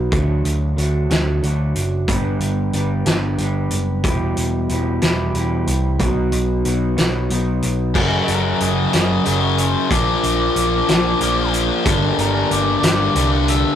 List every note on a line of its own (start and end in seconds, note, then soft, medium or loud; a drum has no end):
0.00 0.10 D#4 medium
0.00 0.11 F#4 medium
0.11 0.41 D2 medium
0.11 1.09 D3 medium
0.11 0.75 F#3 medium
0.11 0.76 A3 medium
0.11 0.78 D4 medium
0.11 0.78 F#4 medium
0.11 kick loud
0.11 closed hi-hat medium
0.44 0.73 D2 medium
0.44 closed hi-hat medium
0.77 1.06 D2 medium
0.77 1.10 F#3 medium
0.77 1.10 A3 medium
0.77 1.09 D4 medium
0.77 1.09 F#4 medium
0.77 closed hi-hat medium
1.10 1.39 D2 medium
1.10 1.76 D3 medium
1.10 1.41 F#3 medium
1.10 1.42 A3 medium
1.10 1.43 D4 medium
1.10 1.43 F#4 medium
1.10 snare medium
1.10 closed hi-hat medium
1.42 1.72 D2 medium
1.42 2.06 F#3 medium
1.42 2.06 A3 medium
1.42 2.07 D4 medium
1.42 2.07 F#4 medium
1.42 closed hi-hat medium
1.75 2.04 F#1 medium
1.75 closed hi-hat medium
2.07 3.06 G2 medium
2.07 3.06 D3 medium
2.07 2.73 G3 medium
2.07 2.74 B3 medium
2.07 2.74 D4 medium
2.07 2.75 G4 medium
2.07 kick medium
2.07 closed hi-hat medium
2.40 2.69 G1 medium
2.40 closed hi-hat medium
2.73 3.03 G1 medium
2.73 3.06 G3 medium
2.73 3.06 B3 medium
2.73 3.05 D4 medium
2.73 3.04 G4 medium
2.73 closed hi-hat medium
3.06 3.35 G1 medium
3.06 3.72 G2 medium
3.06 3.72 D3 medium
3.06 3.37 G3 medium
3.06 3.39 B3 medium
3.06 3.39 D4 medium
3.06 3.39 G4 medium
3.06 snare medium
3.06 closed hi-hat medium
3.38 3.68 G1 medium
3.38 4.02 G3 medium
3.38 4.05 B3 medium
3.38 4.03 D4 medium
3.38 4.03 G4 medium
3.38 closed hi-hat soft
3.71 4.00 F#1 medium
3.71 closed hi-hat medium
4.04 4.33 E1 medium
4.04 5.02 E2 medium
4.04 5.02 B2 medium
4.04 4.68 E3 medium
4.04 4.69 G3 medium
4.04 4.70 E4 medium
4.04 4.71 G4 loud
4.04 kick loud
4.04 closed hi-hat medium
4.36 4.66 E1 medium
4.36 closed hi-hat medium
4.69 4.99 E1 medium
4.69 5.02 E3 medium
4.69 5.01 G3 medium
4.69 5.01 E4 medium
4.69 5.00 G4 medium
4.69 closed hi-hat medium
5.02 5.31 E1 medium
5.02 5.68 E2 medium
5.02 5.68 B2 medium
5.02 5.33 E3 medium
5.02 5.34 G3 medium
5.02 5.35 E4 medium
5.02 5.35 G4 medium
5.02 snare loud
5.02 closed hi-hat medium
5.34 5.63 E1 medium
5.34 5.98 E3 medium
5.34 5.98 G3 medium
5.34 5.99 E4 medium
5.34 5.99 G4 medium
5.34 closed hi-hat medium
5.67 5.96 C2 medium
5.67 closed hi-hat medium
6.00 6.29 B1 medium
6.00 6.98 B2 medium
6.00 6.64 F#3 medium
6.00 6.65 B3 medium
6.00 6.65 D#4 medium
6.00 6.66 F#4 medium
6.00 kick medium
6.00 closed hi-hat medium
6.32 6.61 B1 medium
6.32 closed hi-hat medium
6.65 6.94 B1 medium
6.65 6.97 F#3 medium
6.65 6.97 B3 medium
6.65 6.96 D#4 medium
6.65 6.96 F#4 medium
6.65 closed hi-hat medium
6.97 7.27 B1 medium
6.97 7.64 B2 medium
6.97 7.29 F#3 medium
6.97 7.29 B3 medium
6.97 7.30 D#4 medium
6.97 7.31 F#4 medium
6.97 snare loud
6.97 closed hi-hat medium
7.30 7.59 B1 medium
7.30 7.93 F#3 medium
7.30 7.94 B3 medium
7.30 7.94 D#4 medium
7.30 7.94 F#4 medium
7.30 closed hi-hat medium
7.62 7.92 B1 medium
7.62 closed hi-hat medium
7.94 8.19 F#1 medium
7.94 8.91 F#2 medium
7.94 8.91 C#3 medium
7.94 8.92 F#3 medium
7.94 8.93 A#3 loud
7.94 8.92 C#4 medium
7.94 kick loud
7.94 crash medium
8.28 8.52 F#1 medium
8.28 8.63 A#4 medium
8.28 closed hi-hat medium
8.60 8.85 F#1 medium
8.60 8.93 D#5 medium
8.60 closed hi-hat medium
8.93 9.17 F#1 medium
8.93 9.90 F#2 medium
8.93 9.90 C#3 medium
8.93 9.90 F#3 medium
8.93 9.92 A#3 medium
8.93 9.89 C#4 medium
8.93 9.39 D#5 medium
8.93 snare medium
8.93 closed hi-hat medium
9.24 9.74 F#1 medium
9.24 9.88 F#2 medium
9.24 9.89 C#3 medium
9.24 9.90 F#3 medium
9.24 closed hi-hat medium
9.44 9.59 C#5 medium
9.58 9.91 C5 medium
9.58 closed hi-hat medium
9.91 10.14 A#1 medium
9.91 10.86 A#2 medium
9.91 10.87 F3 medium
9.91 10.88 A#3 medium
9.91 10.87 D4 medium
9.91 11.50 D5 medium
9.91 kick loud
9.91 closed hi-hat medium
10.23 10.47 A#1 medium
10.23 closed hi-hat medium
10.56 10.79 A#1 medium
10.56 closed hi-hat medium
10.87 11.12 A#1 medium
10.87 11.85 A#2 medium
10.87 11.84 F3 medium
10.87 11.84 A#3 medium
10.87 11.87 D4 medium
10.87 snare medium
10.87 closed hi-hat medium
11.20 11.68 A#1 medium
11.20 11.84 A#2 medium
11.20 11.85 F3 medium
11.20 11.85 A#3 medium
11.20 closed hi-hat medium
11.53 closed hi-hat medium
11.85 12.09 G1 medium
11.85 12.81 G2 medium
11.85 12.81 D3 medium
11.85 12.81 G3 medium
11.85 12.81 A#3 medium
11.85 12.81 D4 medium
11.85 kick loud
11.85 closed hi-hat medium
12.18 12.42 G1 medium
12.18 12.53 A#4 medium
12.18 closed hi-hat medium
12.51 12.74 G1 medium
12.51 13.35 D5 medium
12.51 closed hi-hat medium
12.81 13.06 G1 medium
12.81 13.75 G2 medium
12.81 13.75 D3 medium
12.81 13.75 G3 medium
12.81 13.75 A#3 medium
12.81 13.75 D4 medium
12.81 snare loud
12.81 closed hi-hat medium
13.15 13.62 C2 medium
13.15 13.75 G2 medium
13.15 13.75 D3 medium
13.15 13.75 G3 medium
13.15 closed hi-hat medium
13.31 13.48 F#5 loud
13.48 13.75 E5 medium
13.48 closed hi-hat medium